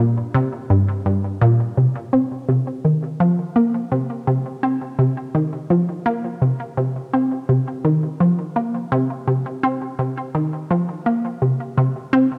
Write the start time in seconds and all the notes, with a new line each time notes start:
0.00 A#2
0.34 C3
0.70 G2
1.06 G2
1.41 A#2
1.77 C3
2.13 C4
2.49 C3
2.85 D#3
3.20 F3
3.56 A#3
3.92 C3
4.27 C3
4.63 C4
4.99 C3
5.35 D#3
5.70 F3
6.06 A#3
6.42 C3
6.77 C3
7.13 C4
7.49 C3
7.85 D#3
8.20 F3
8.56 A#3
8.92 C3
9.27 C3
9.63 C4
9.99 C3
10.35 D#3
10.71 F3
11.06 A#3
11.42 C3
11.77 C3
12.13 C4